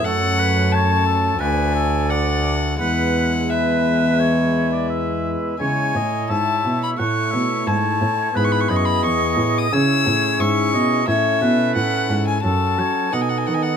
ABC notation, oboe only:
X:1
M:4/4
L:1/16
Q:1/4=87
K:Emix
V:1 name="Oboe"
A2 B2 c2 A2 B2 A2 d2 z2 | B4 B4 c3 d e4 | [K:C#m] c2 d2 e4 f2 e2 c4 | B2 d6 c4 e2 d2 |
c2 B4 z2 A2 c2 d4 |]